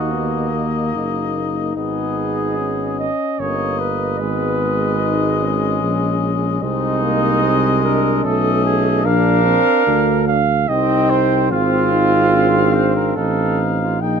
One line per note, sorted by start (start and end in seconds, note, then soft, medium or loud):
0.00 0.96 D#2 medium
0.00 1.72 A#3 medium
0.00 0.15 D#4 medium
0.00 1.31 F#4 medium
0.00 1.75 D#5 medium
0.13 0.55 B3 medium
0.53 0.93 A#3 medium
0.93 1.76 F#1 medium
0.93 2.59 D#4 medium
1.76 3.09 G#1 medium
1.76 3.09 B3 medium
1.76 2.95 G#4 medium
1.76 3.09 D#5 medium
2.57 3.92 C#4 medium
2.99 3.41 D#5 medium
3.38 4.21 G1 medium
3.38 4.21 A#3 medium
3.38 3.81 C#5 medium
3.38 4.15 D#5 medium
3.79 6.22 B4 medium
4.19 5.84 G#1 medium
4.19 6.62 G#3 medium
4.19 4.96 B3 medium
4.19 6.59 D#5 medium
5.00 5.40 D#4 medium
5.41 6.64 C#4 medium
5.82 6.62 A#1 medium
6.62 8.21 C2 medium
6.62 8.27 G#3 medium
6.62 7.04 C4 medium
6.62 7.81 D#4 loud
6.62 8.22 D#5 medium
7.03 7.45 A#3 medium
7.43 7.83 C4 medium
7.84 8.26 D4 medium
7.84 8.26 A#4 medium
8.24 9.07 B1 medium
8.24 9.08 A3 medium
8.24 9.04 C#4 medium
8.24 8.64 A4 medium
8.24 9.07 D#5 medium
8.65 9.05 G#4 loud
9.05 9.59 A#1 medium
9.05 9.44 D4 medium
9.05 10.42 D4 medium
9.05 10.26 A#4 loud
9.05 10.41 F5 medium
9.45 9.86 C4 medium
9.87 10.66 D2 medium
9.87 10.40 D4 medium
10.28 10.70 F5 loud
10.69 11.53 C2 medium
10.69 11.48 C4 medium
10.69 11.53 D#4 medium
10.69 11.12 D#5 loud
10.69 11.52 G5 medium
11.10 11.51 C5 loud
11.51 13.16 G#1 loud
11.51 11.94 C4 medium
11.51 13.19 C4 medium
11.51 12.76 F4 loud
11.51 13.16 F5 medium
11.92 12.35 D#4 medium
12.34 13.18 D4 medium
12.75 12.96 C5 medium
12.96 13.17 A#4 medium
13.16 14.02 A1 medium
13.16 14.00 C4 medium
13.16 14.00 D#4 medium
13.16 13.63 A4 loud
13.16 14.02 F5 medium
13.80 14.02 F4 medium
14.01 14.20 A#1 medium
14.01 14.20 A#3 medium
14.01 14.20 D#4 medium
14.01 14.20 G5 medium